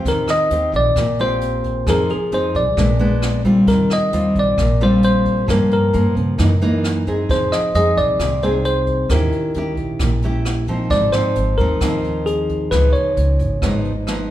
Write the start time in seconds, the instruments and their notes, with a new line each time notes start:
Already playing: nylon-string guitar C4 F4 G4
0.05 upright bass D#2, nylon-string guitar D#3, tine electric piano A#4, kick, closed hi-hat
0.28 tine electric piano D#5, cross-stick, closed hi-hat
0.51 upright bass D#2, nylon-string guitar C4 F4 G4, closed hi-hat
0.73 upright bass A#1, tine electric piano D5, kick, closed hi-hat
0.96 upright bass A#1, nylon-string guitar A#2, kick, cross-stick, closed hi-hat
1.19 nylon-string guitar C4 F4 G4, tine electric piano C5, closed hi-hat
1.41 closed hi-hat
1.64 kick, closed hi-hat
1.86 upright bass F2, nylon-string guitar F3 C4 D#4 G#4, tine electric piano A#4, kick, cross-stick, closed hi-hat
2.09 tine electric piano G#4, closed hi-hat
2.32 upright bass F2, nylon-string guitar C4 D#4 G#4, tine electric piano C5, closed hi-hat
2.54 upright bass C2, tine electric piano D5, kick, closed hi-hat
2.77 upright bass A#1, nylon-string guitar A#2 G#3 B3 D4, kick, cross-stick, closed hi-hat
2.99 nylon-string guitar G#3 B3 D4, closed hi-hat
3.22 cross-stick, closed hi-hat
3.45 nylon-string guitar G3 C4 F4, kick, closed hi-hat
3.67 upright bass D#2, nylon-string guitar D#3, tine electric piano A#4, kick, closed hi-hat
3.90 tine electric piano D#5, cross-stick, closed hi-hat
4.13 upright bass D#2, nylon-string guitar G3 C4 F4, closed hi-hat
4.35 upright bass A#1, kick, closed hi-hat
4.39 tine electric piano D5
4.58 upright bass A#1, nylon-string guitar A#2, kick, cross-stick, closed hi-hat
4.80 nylon-string guitar G3 C4 F4, tine electric piano C5, closed hi-hat
5.03 tine electric piano C5, closed hi-hat
5.25 kick, closed hi-hat
5.48 nylon-string guitar G2 F3 A#3 C#4, upright bass G2, tine electric piano A#4, kick, cross-stick, closed hi-hat
5.71 tine electric piano A#4, closed hi-hat
5.93 upright bass G2, nylon-string guitar F3 A#3 C#4, closed hi-hat
6.16 upright bass C#3, kick, closed hi-hat
6.38 nylon-string guitar F#2 E3 A#3 D#4, upright bass F#2, kick, cross-stick, closed hi-hat
6.62 nylon-string guitar E3 A#3 D#4, closed hi-hat
6.84 cross-stick, closed hi-hat
7.07 nylon-string guitar C4 D#4 G#4, kick, closed hi-hat
7.29 upright bass F2, nylon-string guitar F3, tine electric piano C5, kick, closed hi-hat
7.52 tine electric piano D#5, cross-stick, closed hi-hat
7.75 upright bass F2, nylon-string guitar C4 D#4 G#4, tine electric piano D#5, closed hi-hat
7.97 upright bass C2, tine electric piano D5, kick, closed hi-hat
8.19 upright bass C2, nylon-string guitar C3, kick, cross-stick, closed hi-hat
8.42 nylon-string guitar C4 D#4 G#4, tine electric piano C5, closed hi-hat
8.65 tine electric piano C5, closed hi-hat
8.87 kick, closed hi-hat
9.09 upright bass D#2, nylon-string guitar D#3 C#4 E4 G4, tine electric piano A#4, kick, cross-stick, closed hi-hat
9.32 closed hi-hat
9.54 upright bass D#2, nylon-string guitar C#4 E4 G4, closed hi-hat
9.77 upright bass A#1, kick, closed hi-hat
9.99 upright bass A#1, nylon-string guitar A#2, kick, cross-stick, closed hi-hat
10.22 nylon-string guitar C#4 E4 G4, closed hi-hat
10.45 cross-stick, closed hi-hat
10.67 nylon-string guitar F3 C4 D#4, kick, closed hi-hat
10.90 upright bass G#1, nylon-string guitar G#2, tine electric piano D5, kick, closed hi-hat
11.12 nylon-string guitar F3 C4 D#4, tine electric piano C5, cross-stick, closed hi-hat
11.35 upright bass G#1, closed hi-hat
11.58 upright bass D#2, nylon-string guitar F3 C4 D#4, tine electric piano A#4, kick, closed hi-hat
11.81 upright bass D#2, nylon-string guitar D#3 F3 C4 D#4, kick, cross-stick, closed hi-hat
12.04 closed hi-hat
12.26 tine electric piano G#4, closed hi-hat
12.49 kick, closed hi-hat
12.71 upright bass C#2, nylon-string guitar C#3 F3 B3 D#4, tine electric piano B4, kick, cross-stick, closed hi-hat
12.93 tine electric piano C#5, closed hi-hat
13.17 upright bass C#2, closed hi-hat
13.39 upright bass G#1, kick, closed hi-hat
13.62 upright bass G#1, nylon-string guitar G#2 F3 B3 D#4, kick, cross-stick, closed hi-hat
13.85 closed hi-hat
14.07 nylon-string guitar F3 B3 D#4, cross-stick, closed hi-hat